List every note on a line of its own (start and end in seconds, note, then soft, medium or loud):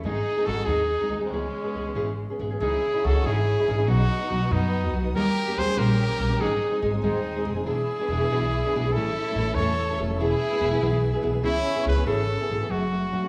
0.04 0.18 G#1 medium
0.04 0.17 G#2 medium
0.04 0.18 D#3 medium
0.04 0.18 G#3 medium
0.04 0.18 C4 medium
0.04 0.44 D#4 medium
0.04 0.18 D#4 medium
0.04 0.47 G#4 medium
0.04 0.18 G#4 medium
0.37 0.46 G#3 soft
0.37 0.47 C4 soft
0.37 0.46 D#4 medium
0.37 0.47 G#4 medium
0.46 0.60 G#1 medium
0.46 0.57 G#3 medium
0.46 0.57 C4 medium
0.46 0.57 D#4 medium
0.46 0.66 F#4 medium
0.46 0.57 G#4 medium
0.46 0.67 A4 loud
0.58 0.68 G#3 soft
0.58 0.67 C4 soft
0.58 0.68 D#4 soft
0.58 0.67 G#4 soft
0.65 0.95 D#2 medium
0.65 0.81 G#2 medium
0.65 0.81 D#3 medium
0.65 0.81 G#3 medium
0.65 0.81 C4 medium
0.65 1.24 D#4 medium
0.65 0.81 D#4 medium
0.65 1.23 G#4 medium
0.65 0.81 G#4 medium
1.01 1.09 G#3 soft
1.01 1.10 C4 soft
1.01 1.10 D#4 soft
1.01 1.11 G#4 medium
1.09 1.31 D#2 medium
1.09 1.21 G#3 medium
1.09 1.20 C4 medium
1.09 1.20 D#4 medium
1.09 1.20 G#4 medium
1.21 1.32 G#3 soft
1.21 1.31 C4 soft
1.21 1.30 C4 medium
1.21 1.31 D#4 soft
1.21 1.33 D#4 soft
1.21 1.31 G#4 soft
1.31 1.46 C#2 medium
1.31 1.45 C#3 medium
1.31 1.46 E3 medium
1.31 2.19 G#3 medium
1.31 1.46 B3 medium
1.31 2.19 C#4 medium
1.31 1.46 C#4 medium
1.31 1.46 G#4 medium
1.64 1.74 B3 soft
1.64 1.74 C#4 soft
1.64 1.74 G#4 medium
1.74 1.88 C#2 medium
1.74 1.85 E3 soft
1.74 1.85 B3 medium
1.74 1.85 C#4 medium
1.74 1.85 G#4 medium
1.86 1.95 B3 soft
1.86 1.95 C#4 soft
1.86 1.95 G#4 soft
1.95 2.23 G#1 medium
1.95 2.09 C#3 medium
1.95 2.09 E3 medium
1.95 2.10 B3 medium
1.95 2.10 C#4 medium
1.95 2.10 G#4 medium
2.30 2.39 B3 soft
2.30 2.39 C#4 soft
2.30 2.40 G#4 soft
2.39 2.53 G#1 medium
2.39 2.49 E3 medium
2.39 2.50 B3 soft
2.39 2.50 C#4 soft
2.39 2.49 G#4 medium
2.50 2.61 B3 soft
2.50 2.61 C#4 soft
2.50 2.60 G#4 soft
2.60 2.75 C#2 medium
2.60 2.75 C#3 medium
2.60 2.75 E3 medium
2.60 2.75 C#4 medium
2.60 2.75 D#4 medium
2.60 3.02 E4 medium
2.60 3.07 G#4 medium
2.60 2.75 G#4 medium
2.60 3.88 C#5 medium
2.60 3.88 E5 medium
2.60 7.63 D#6 medium
2.94 3.04 C#4 soft
2.94 3.04 D#4 medium
2.94 3.04 G#4 medium
3.04 3.18 C#2 medium
3.04 3.14 E3 medium
3.04 3.15 C#4 medium
3.04 3.15 D#4 medium
3.04 3.25 F#4 medium
3.04 3.14 G#4 medium
3.04 3.27 A4 loud
3.15 3.25 C#4 soft
3.15 3.25 D#4 soft
3.15 3.25 G#4 soft
3.24 3.52 G#1 loud
3.24 3.39 C#3 medium
3.24 3.39 E3 medium
3.24 3.39 C#4 medium
3.24 3.39 D#4 medium
3.24 3.89 E4 medium
3.24 3.89 G#4 medium
3.24 3.39 G#4 medium
3.60 3.67 C#4 soft
3.60 3.68 D#4 soft
3.60 3.68 G#4 medium
3.68 3.88 G#1 medium
3.68 3.78 E3 medium
3.68 3.78 C#4 medium
3.68 3.77 D#4 medium
3.68 3.76 G#4 medium
3.78 3.88 C#4 medium
3.78 3.87 D#4 soft
3.78 3.88 G#4 medium
3.87 4.03 B1 medium
3.87 4.01 B2 medium
3.87 4.02 F#3 medium
3.87 4.02 B3 medium
3.87 4.02 D#4 medium
3.87 4.49 D#4 medium
3.87 4.02 F#4 medium
3.87 4.54 F#4 loud
3.87 5.14 B4 medium
3.87 5.13 F#5 medium
4.20 4.29 B3 soft
4.20 4.30 D#4 medium
4.20 4.31 F#4 medium
4.30 4.44 B1 medium
4.30 4.41 F#3 medium
4.30 4.41 B3 medium
4.30 4.41 D#4 medium
4.30 4.40 F#4 medium
4.41 4.50 B3 soft
4.41 4.50 D#4 soft
4.41 4.50 F#4 soft
4.50 4.93 F#2 medium
4.50 4.65 B2 medium
4.50 4.65 F#3 medium
4.50 4.65 B3 medium
4.50 5.01 B3 medium
4.50 4.65 D#4 medium
4.50 5.00 D#4 loud
4.50 4.65 F#4 medium
4.84 4.93 B3 soft
4.84 4.94 D#4 soft
4.84 4.94 F#4 medium
4.93 5.14 B1 medium
4.93 5.04 F#3 medium
4.93 5.04 B3 medium
4.93 5.04 D#4 medium
4.93 5.03 F#4 medium
5.04 5.15 B3 soft
5.04 5.15 D#4 medium
5.04 5.14 F#4 medium
5.14 5.29 D#2 loud
5.14 5.28 D#3 medium
5.14 5.29 G3 medium
5.14 5.29 A#3 medium
5.14 5.29 C#4 loud
5.14 5.29 G4 loud
5.14 5.56 G4 loud
5.14 5.60 A#4 loud
5.14 6.39 C#5 medium
5.14 6.39 G5 medium
5.48 5.57 A#3 soft
5.48 5.57 C#4 medium
5.48 5.58 G4 medium
5.57 5.70 D#2 medium
5.57 5.67 G3 medium
5.57 5.67 A#3 medium
5.57 5.67 C#4 medium
5.57 5.66 G4 medium
5.57 5.78 G#4 medium
5.57 5.80 C5 loud
5.67 5.76 A#3 soft
5.67 5.76 C#4 medium
5.67 5.76 G4 medium
5.77 6.05 A#1 loud
5.77 5.91 D#3 medium
5.77 5.91 G3 medium
5.77 5.91 A#3 medium
5.77 5.91 C#4 medium
5.77 5.91 G4 medium
5.77 6.40 G4 loud
5.77 6.42 A#4 loud
6.09 6.18 A#3 soft
6.09 6.18 C#4 medium
6.09 6.19 G4 soft
6.18 6.40 A#1 loud
6.18 6.29 G3 medium
6.18 6.29 A#3 medium
6.18 6.28 C#4 medium
6.18 6.28 G4 medium
6.29 6.40 A#3 soft
6.29 6.40 C#4 soft
6.29 6.40 G4 soft
6.39 6.55 G#1 medium
6.39 6.53 G#2 medium
6.39 6.53 D#3 medium
6.39 6.54 G#3 medium
6.39 6.54 C4 medium
6.39 6.54 D#4 medium
6.39 6.78 D#4 medium
6.39 6.54 G#4 medium
6.39 6.78 G#4 medium
6.39 7.66 C5 medium
6.39 8.92 G#5 medium
6.71 6.81 G#3 soft
6.71 6.81 C4 soft
6.71 6.81 D#4 medium
6.71 6.82 G#4 soft
6.82 6.96 G#1 medium
6.82 6.93 G#3 medium
6.82 6.93 C4 medium
6.82 6.92 D#4 medium
6.82 6.92 G#4 medium
6.93 7.02 G#3 soft
6.93 7.03 C4 medium
6.93 7.03 D#4 soft
6.93 7.03 G#4 soft
7.02 7.47 D#2 medium
7.02 7.17 G#2 medium
7.02 7.17 D#3 medium
7.02 7.17 G#3 medium
7.02 7.47 C4 medium
7.02 7.17 C4 medium
7.02 7.47 D#4 medium
7.02 7.17 D#4 medium
7.02 7.17 G#4 medium
7.36 7.44 G#3 soft
7.36 7.45 C4 soft
7.36 7.45 D#4 soft
7.36 7.46 G#4 soft
7.45 7.65 F#1 loud
7.45 7.56 G#3 medium
7.45 7.55 C4 soft
7.45 7.55 D#4 medium
7.45 7.54 G#4 medium
7.55 7.65 G#3 soft
7.55 7.66 C4 soft
7.55 7.66 D#4 soft
7.55 7.65 G#4 soft
7.65 7.80 E1 medium
7.65 7.80 E3 medium
7.65 7.80 B3 medium
7.65 7.80 D4 medium
7.65 8.89 E4 medium
7.65 7.80 G#4 medium
7.65 8.94 G#4 medium
7.65 8.93 D5 medium
7.65 8.93 E6 medium
7.99 8.09 B3 soft
7.99 8.10 D4 soft
7.99 8.10 G#4 medium
8.08 8.22 E1 medium
8.08 8.21 E3 medium
8.08 8.20 B3 medium
8.08 8.20 D4 medium
8.08 8.18 G#4 medium
8.20 8.30 B3 soft
8.20 8.31 D4 medium
8.20 8.30 G#4 medium
8.30 8.58 B1 medium
8.30 8.45 E3 loud
8.30 8.45 B3 medium
8.30 8.45 D4 medium
8.30 8.45 G#4 medium
8.65 8.74 B3 soft
8.65 8.75 D4 medium
8.65 8.75 G#4 medium
8.73 8.93 B1 medium
8.73 8.85 E3 medium
8.73 8.85 B3 medium
8.73 8.85 D4 medium
8.77 8.85 G#4 medium
8.87 8.96 B3 medium
8.87 8.96 D4 soft
8.87 8.95 G#4 medium
8.91 9.08 A1 loud
8.91 9.55 E4 medium
8.91 9.57 A4 loud
8.91 10.18 C#5 medium
8.91 10.18 A5 medium
8.95 9.09 A2 medium
8.95 9.09 E3 medium
8.95 9.09 A3 medium
8.95 9.09 C#4 medium
8.95 9.09 E4 medium
8.95 9.09 A4 medium
8.95 11.42 E6 medium
9.29 9.37 A3 soft
9.29 9.37 C#4 soft
9.29 9.38 E4 medium
9.29 9.38 A4 medium
9.35 9.49 A1 medium
9.35 9.47 A3 medium
9.35 9.48 C#4 medium
9.40 9.48 E4 medium
9.40 9.48 A4 medium
9.49 9.58 A3 soft
9.49 9.58 C#4 soft
9.49 9.58 E4 soft
9.49 9.58 A4 medium
9.55 9.99 E2 medium
9.55 9.71 A2 medium
9.55 9.71 E3 medium
9.55 10.03 A4 medium
9.55 10.03 C#5 loud
9.59 9.71 A3 medium
9.59 9.71 C#4 medium
9.59 9.71 E4 loud
9.59 9.71 A4 loud
9.90 9.98 A3 soft
9.90 9.99 C#4 soft
9.90 9.99 E4 medium
9.90 9.99 A4 medium
9.98 10.18 F1 loud
9.98 10.09 A3 medium
9.98 10.09 C#4 medium
9.98 10.08 E4 medium
9.98 10.08 A4 medium
10.09 10.19 A3 medium
10.09 10.19 C#4 soft
10.09 10.19 E4 soft
10.09 10.19 A4 medium
10.16 10.33 E1 loud
10.16 10.33 E3 medium
10.16 11.13 E4 loud
10.16 11.13 G#4 loud
10.16 11.43 B4 loud
10.16 11.43 G#5 medium
10.20 10.33 B3 medium
10.20 10.33 E4 medium
10.20 10.33 G#4 medium
10.52 10.60 B3 soft
10.52 10.61 E4 medium
10.52 10.61 G#4 medium
10.60 10.74 E1 medium
10.60 10.71 E3 medium
10.60 10.71 B3 medium
10.60 10.71 E4 medium
10.60 10.70 G#4 medium
10.71 10.81 B3 medium
10.71 10.82 E4 medium
10.71 10.81 G#4 medium
10.81 11.08 B1 medium
10.81 10.95 E3 loud
10.81 10.95 B3 loud
10.81 10.95 E4 loud
10.81 10.95 G#4 medium
11.13 11.21 B3 medium
11.13 11.22 E4 medium
11.13 11.23 G#4 medium
11.22 11.43 B1 medium
11.22 11.33 E3 medium
11.22 11.33 B3 medium
11.22 11.32 E4 medium
11.22 11.32 G#4 medium
11.33 11.42 B3 soft
11.33 11.43 E4 soft
11.33 11.43 G#4 medium
11.43 11.58 C#2 loud
11.43 11.57 C#3 medium
11.43 11.57 E3 medium
11.43 11.57 B3 medium
11.43 12.25 C#4 loud
11.43 11.57 E4 medium
11.43 11.84 E4 loud
11.43 11.57 G#4 medium
11.43 12.70 C#5 medium
11.43 12.70 B5 medium
11.43 12.70 E6 loud
11.75 11.84 B3 soft
11.75 11.85 E4 medium
11.75 11.85 G#4 medium
11.86 11.99 C#2 medium
11.86 11.96 E3 medium
11.86 11.96 B3 medium
11.86 11.96 E4 medium
11.86 11.96 G#4 medium
11.86 12.06 B4 loud
11.97 12.05 B3 medium
11.97 12.06 E4 medium
11.97 12.06 G#4 medium
12.06 12.34 G#1 medium
12.06 12.20 C#3 medium
12.06 12.20 E3 medium
12.06 12.20 B3 medium
12.06 12.21 E4 medium
12.06 12.20 G#4 medium
12.06 12.72 A4 medium
12.41 12.50 B3 soft
12.41 12.50 E4 medium
12.41 12.51 G#4 medium
12.49 12.63 G#1 medium
12.49 12.61 E3 medium
12.49 12.60 B3 medium
12.49 12.59 E4 medium
12.49 12.58 G#4 medium
12.60 12.70 B3 soft
12.60 12.70 E4 soft
12.60 12.70 G#4 medium
12.69 13.11 F#1 medium
12.69 12.84 F#2 medium
12.69 12.84 C#3 medium
12.69 12.84 F#3 medium
12.69 12.84 A3 medium
12.69 12.84 C#4 medium
12.69 12.85 F#4 medium
12.69 13.28 F#4 medium
12.69 13.28 A4 medium
12.69 13.28 F#5 medium
12.69 13.28 C#6 medium
12.91 13.05 F#3 soft
12.91 13.05 A3 soft
12.91 13.05 C#4 medium
12.91 13.06 F#4 medium
13.12 13.23 F#3 medium
13.12 13.23 A3 medium
13.12 13.22 C#4 medium
13.12 13.22 F#4 medium
13.23 13.28 F#3 soft
13.23 13.28 A3 soft
13.23 13.28 C#4 soft
13.23 13.28 F#4 soft